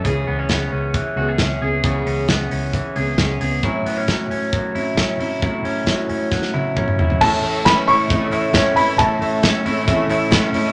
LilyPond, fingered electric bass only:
\new Staff \with { instrumentName = "Fingered electric bass" } { \clef bass \time 4/4 \key a \lydian \tempo 4 = 134 cis,8 cis,8 cis,8 cis,8. r16 cis,8 cis,8 cis,8 | cis,8 cis,8 cis,8 cis,8. r16 cis,8 cis,8 cis,8 | a,,8 a,,8 a,,8 a,,8. r16 a,,8 a,,8 a,,8 | a,,8 a,,8 a,,8 a,,8. r16 a,,8 a,,8 a,,8 |
a,,8 a,,8. r16 a,,8 a,,8 a,,8 a,,8 a,,8 | a,,8 a,,8. r16 a,,8 a,,8 a,,8 a,,8 a,,8 | }